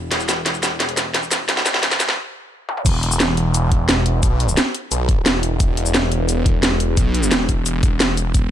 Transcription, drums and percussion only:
0.12 snare medium
0.12 closed hi-hat medium
0.20 shaker soft
0.29 snare medium
0.29 closed hi-hat medium
0.29 shaker medium
0.46 snare medium
0.46 closed hi-hat loud
0.54 shaker soft
0.63 snare medium
0.63 closed hi-hat medium
0.63 shaker medium
0.80 snare medium
0.80 closed hi-hat medium
0.89 closed hi-hat soft
0.97 snare medium
0.97 closed hi-hat medium
0.97 shaker medium
1.14 snare medium
1.14 closed hi-hat medium
1.23 shaker soft
1.32 snare medium
1.32 closed hi-hat medium
1.32 shaker medium
1.49 snare medium
1.49 closed hi-hat medium
1.57 snare medium
1.57 shaker soft
1.66 snare medium
1.66 closed hi-hat medium
1.66 shaker medium
1.74 snare medium
1.74 closed hi-hat soft
1.83 snare loud
1.83 closed hi-hat medium
1.92 snare medium
1.92 shaker soft
2.00 snare medium
2.00 closed hi-hat medium
2.00 shaker medium
2.09 snare medium
2.69 high tom medium
2.77 mid tom medium
2.86 kick loud
2.86 closed hi-hat medium
2.86 crash loud
2.86 shaker medium
3.03 closed hi-hat medium
3.12 shaker medium
3.20 snare loud
3.20 closed hi-hat loud
3.20 shaker medium
3.37 closed hi-hat medium
3.54 closed hi-hat loud
3.54 shaker soft
3.72 kick loud
3.72 closed hi-hat medium
3.89 snare loud
3.89 closed hi-hat medium
3.89 shaker soft
4.06 closed hi-hat medium
4.23 kick loud
4.23 closed hi-hat loud
4.23 shaker medium
4.40 closed hi-hat medium
4.49 shaker medium
4.57 snare loud
4.57 closed hi-hat medium
4.57 shaker soft
4.74 closed hi-hat medium
4.92 closed hi-hat loud
4.92 shaker soft
5.09 kick loud
5.09 closed hi-hat medium
5.26 snare loud
5.26 closed hi-hat medium
5.26 shaker soft
5.43 closed hi-hat medium
5.60 kick loud
5.60 closed hi-hat medium
5.60 shaker soft
5.77 closed hi-hat medium
5.86 shaker medium
5.94 snare loud
5.94 closed hi-hat medium
5.94 shaker soft
6.12 closed hi-hat medium
6.29 closed hi-hat medium
6.29 shaker soft
6.46 kick loud
6.46 closed hi-hat medium
6.63 snare loud
6.63 closed hi-hat loud
6.63 shaker soft
6.80 closed hi-hat medium
6.97 kick loud
6.97 closed hi-hat medium
6.97 shaker soft
7.14 closed hi-hat medium
7.23 shaker medium
7.32 snare loud
7.32 closed hi-hat medium
7.32 shaker soft
7.49 kick medium
7.49 closed hi-hat medium
7.49 shaker soft
7.66 closed hi-hat medium
7.66 shaker soft
7.83 kick loud
7.83 closed hi-hat medium
7.83 shaker soft
8.00 snare loud
8.00 closed hi-hat medium
8.00 shaker soft
8.17 closed hi-hat medium
8.17 shaker soft
8.34 kick loud
8.34 closed hi-hat medium
8.34 shaker soft

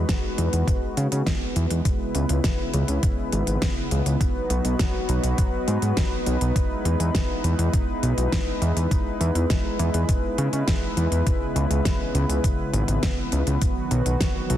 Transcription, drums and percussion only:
0.09 kick loud
0.09 snare loud
0.09 closed hi-hat medium
0.38 closed hi-hat medium
0.53 closed hi-hat medium
0.68 kick loud
0.68 closed hi-hat medium
0.97 closed hi-hat medium
1.12 closed hi-hat medium
1.26 kick loud
1.26 snare loud
1.26 closed hi-hat medium
1.56 closed hi-hat medium
1.71 closed hi-hat medium
1.85 kick loud
1.85 closed hi-hat medium
2.15 closed hi-hat medium
2.29 closed hi-hat medium
2.44 kick loud
2.44 snare loud
2.44 closed hi-hat medium
2.74 closed hi-hat medium
2.88 closed hi-hat medium
3.03 kick loud
3.03 closed hi-hat loud
3.32 closed hi-hat medium
3.47 closed hi-hat medium
3.62 kick loud
3.62 snare loud
3.62 closed hi-hat medium
3.91 closed hi-hat medium
4.06 closed hi-hat medium
4.21 kick loud
4.21 closed hi-hat medium
4.50 closed hi-hat medium
4.65 closed hi-hat medium
4.79 kick loud
4.79 snare loud
4.79 closed hi-hat medium
5.09 closed hi-hat medium
5.24 closed hi-hat medium
5.38 kick loud
5.38 closed hi-hat medium
5.68 closed hi-hat medium
5.82 closed hi-hat medium
5.97 kick loud
5.97 snare loud
5.97 closed hi-hat medium
6.26 closed hi-hat medium
6.41 closed hi-hat medium
6.56 kick loud
6.56 closed hi-hat medium
6.85 closed hi-hat medium
7.00 closed hi-hat medium
7.15 kick loud
7.15 snare loud
7.15 closed hi-hat medium
7.44 closed hi-hat medium
7.59 closed hi-hat medium
7.74 kick loud
7.74 closed hi-hat medium
8.03 closed hi-hat medium
8.18 closed hi-hat medium
8.32 kick loud
8.32 snare loud
8.32 closed hi-hat medium
8.62 closed hi-hat medium
8.77 closed hi-hat medium
8.91 kick loud
8.91 closed hi-hat medium
9.21 closed hi-hat medium
9.35 closed hi-hat medium
9.50 kick loud
9.50 snare loud
9.50 closed hi-hat medium
9.79 closed hi-hat medium
9.94 closed hi-hat medium
10.09 kick loud
10.09 closed hi-hat medium
10.38 closed hi-hat medium
10.53 closed hi-hat medium
10.68 kick loud
10.68 snare loud
10.68 closed hi-hat medium
10.97 closed hi-hat medium
11.12 closed hi-hat medium
11.27 kick loud
11.27 closed hi-hat medium
11.56 closed hi-hat medium
11.71 closed hi-hat medium
11.85 kick loud
11.85 snare loud
11.85 closed hi-hat medium
12.15 closed hi-hat medium
12.29 closed hi-hat medium
12.44 kick loud
12.44 closed hi-hat medium
12.74 closed hi-hat medium
12.88 closed hi-hat medium
13.03 kick loud
13.03 snare loud
13.03 closed hi-hat medium
13.32 closed hi-hat medium
13.47 closed hi-hat medium
13.62 kick loud
13.62 closed hi-hat loud
13.91 closed hi-hat medium
14.06 closed hi-hat medium
14.21 kick loud
14.21 snare loud
14.21 closed hi-hat medium
14.50 closed hi-hat medium

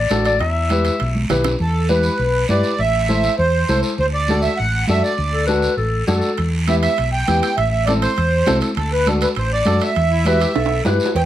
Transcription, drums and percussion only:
0.09 high conga medium
0.09 high timbale medium
0.09 low timbale medium
0.09 short guiro medium
0.25 high timbale medium
0.25 short guiro medium
0.39 high conga soft
0.39 high timbale medium
0.39 long guiro medium
0.70 high conga medium
0.70 high timbale medium
0.70 short guiro medium
0.85 high timbale medium
0.85 short guiro medium
0.99 high conga soft
0.99 high timbale medium
0.99 long guiro medium
1.15 high conga medium
1.30 low conga medium
1.30 high timbale medium
1.30 short guiro medium
1.44 low conga medium
1.44 high timbale medium
1.44 short guiro medium
1.59 high conga soft
1.59 long guiro medium
1.89 high conga medium
1.89 short guiro medium
2.03 short guiro medium
2.18 high conga soft
2.18 long guiro medium
2.48 high conga medium
2.48 short guiro medium
2.63 short guiro medium
2.79 high conga soft
2.79 long guiro medium
3.08 high conga medium
3.08 short guiro medium
3.23 short guiro medium
3.38 high conga soft
3.38 long guiro medium
3.69 high conga medium
3.69 short guiro medium
3.83 short guiro medium
3.98 high conga soft
3.98 long guiro medium
4.28 high conga medium
4.28 short guiro medium
4.42 short guiro medium
4.58 high conga soft
4.58 long guiro medium
4.87 high conga medium
4.87 short guiro medium
5.04 short guiro medium
5.18 high conga soft
5.18 long guiro medium
5.48 high conga medium
5.48 short guiro medium
5.62 short guiro medium
5.78 high conga soft
5.78 long guiro medium
6.08 high conga medium
6.08 short guiro medium
6.22 short guiro medium
6.37 high conga soft
6.37 high timbale medium
6.37 long guiro medium
6.67 high conga medium
6.67 high timbale medium
6.67 short guiro medium
6.83 high timbale medium
6.83 short guiro medium
6.98 high conga soft
6.98 high timbale medium
6.98 long guiro medium
7.28 high conga medium
7.28 high timbale medium
7.28 short guiro medium
7.43 high timbale medium
7.43 short guiro medium
7.57 high conga soft
7.57 high timbale medium
7.57 long guiro medium
7.87 high conga medium
7.87 high timbale medium
7.87 short guiro medium
8.02 high timbale medium
8.02 short guiro medium
8.16 high conga soft
8.16 high timbale medium
8.16 long guiro medium
8.46 high conga medium
8.46 high timbale medium
8.46 low timbale medium
8.46 short guiro medium
8.61 high timbale medium
8.61 short guiro medium
8.75 high conga soft
8.75 high timbale medium
8.75 long guiro medium
9.06 high conga medium
9.06 high timbale medium
9.06 short guiro medium
9.21 high timbale medium
9.21 short guiro medium
9.35 high conga soft
9.35 high timbale medium
9.35 long guiro medium
9.65 high conga medium
9.65 high timbale medium
9.65 short guiro medium
9.80 high timbale medium
9.80 short guiro medium
9.95 high conga soft
9.95 high timbale medium
9.95 long guiro medium
10.25 high conga medium
10.25 high timbale medium
10.25 short guiro medium
10.41 high timbale medium
10.41 short guiro medium
10.56 high timbale loud
10.56 long guiro medium
10.66 high timbale medium
10.85 high conga medium
10.85 low timbale medium
10.85 short guiro medium
11.00 short guiro medium
11.06 low timbale medium
11.16 cowbell loud
11.16 long guiro medium

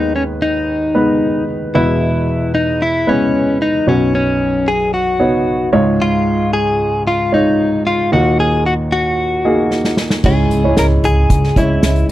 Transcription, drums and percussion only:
9.71 snare soft
9.84 snare soft
9.97 snare medium
10.10 snare medium
10.24 kick medium
10.24 crash medium
10.51 closed hi-hat medium
10.77 snare medium
10.77 closed hi-hat medium
11.04 closed hi-hat medium
11.30 kick medium
11.30 closed hi-hat medium
11.44 snare soft
11.56 kick medium
11.56 closed hi-hat medium
11.83 snare medium
11.83 closed hi-hat medium
11.96 closed hi-hat soft

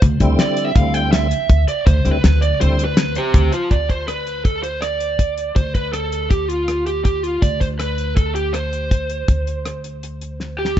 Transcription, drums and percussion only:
0.02 kick loud
0.02 closed hi-hat medium
0.20 kick medium
0.20 closed hi-hat medium
0.39 snare loud
0.39 closed hi-hat medium
0.57 closed hi-hat medium
0.75 kick loud
0.75 closed hi-hat medium
0.94 closed hi-hat medium
1.13 snare loud
1.13 closed hi-hat medium
1.31 closed hi-hat medium
1.49 kick loud
1.49 closed hi-hat medium
1.68 closed hi-hat medium
1.87 kick loud
1.87 closed hi-hat medium
2.05 closed hi-hat medium
2.24 snare loud
2.24 closed hi-hat medium
2.42 closed hi-hat medium
2.61 closed hi-hat medium
2.79 closed hi-hat medium
2.97 snare loud
2.97 closed hi-hat medium
3.15 closed hi-hat medium
3.34 kick medium
3.34 closed hi-hat medium
3.52 closed hi-hat medium
3.71 kick medium
3.71 closed hi-hat medium
3.89 kick medium
3.89 closed hi-hat soft
4.08 cross-stick medium
4.08 closed hi-hat medium
4.27 closed hi-hat soft
4.45 kick medium
4.45 closed hi-hat medium
4.64 closed hi-hat soft
4.82 cross-stick medium
4.82 closed hi-hat medium
5.00 closed hi-hat soft
5.19 kick medium
5.19 closed hi-hat medium
5.38 closed hi-hat soft
5.56 kick medium
5.56 closed hi-hat medium
5.75 kick medium
5.75 closed hi-hat medium
5.93 cross-stick medium
5.93 closed hi-hat medium
6.12 closed hi-hat soft
6.31 kick medium
6.31 closed hi-hat medium
6.50 closed hi-hat soft
6.68 cross-stick medium
6.68 closed hi-hat medium
6.87 closed hi-hat soft
7.05 kick medium
7.05 closed hi-hat medium
7.24 closed hi-hat soft
7.42 kick medium
7.42 closed hi-hat medium
7.61 kick medium
7.61 closed hi-hat soft
7.80 cross-stick medium
7.80 closed hi-hat medium
7.98 closed hi-hat soft
8.17 kick medium
8.17 closed hi-hat medium
8.36 closed hi-hat soft
8.54 cross-stick medium
8.54 closed hi-hat medium
8.73 closed hi-hat soft
8.91 kick medium
8.91 closed hi-hat medium
9.10 closed hi-hat soft
9.28 kick medium
9.28 closed hi-hat medium
9.47 closed hi-hat soft
9.65 cross-stick medium
9.65 closed hi-hat medium
9.84 closed hi-hat soft
10.03 closed hi-hat medium
10.21 closed hi-hat soft
10.40 snare soft
10.65 snare medium

